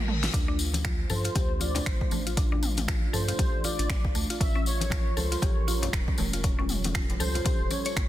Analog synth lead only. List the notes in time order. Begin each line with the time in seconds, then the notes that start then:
1.11 C5
1.36 C5
1.61 D5
1.76 D5
1.87 C5
3.14 C5
3.39 C5
3.64 D5
4.42 E5
4.67 C#5
5.17 C5
5.42 C#5
7.20 C5
7.71 C#5